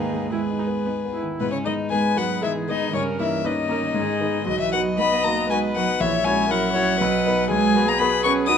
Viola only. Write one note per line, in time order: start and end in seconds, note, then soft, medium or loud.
0.00 0.25 D#4 medium
0.32 0.40 E4 medium
0.59 0.67 D#4 soft
0.86 0.94 B3 soft
1.13 1.39 E4 soft
1.91 2.43 B4 medium
2.42 2.93 G#4 medium
2.94 3.44 A#4 medium
3.45 3.53 B4 medium
3.70 3.78 A#4 medium
3.96 4.47 G#4 medium
4.48 4.99 F#4 medium
4.99 5.49 D#5 medium
5.50 6.02 B4 medium
6.01 6.50 C#5 medium
6.50 6.74 A#4 medium
6.74 6.99 C#5 medium
7.01 7.50 B4 medium
7.51 8.50 G#4 medium
8.48 8.58 F#4 medium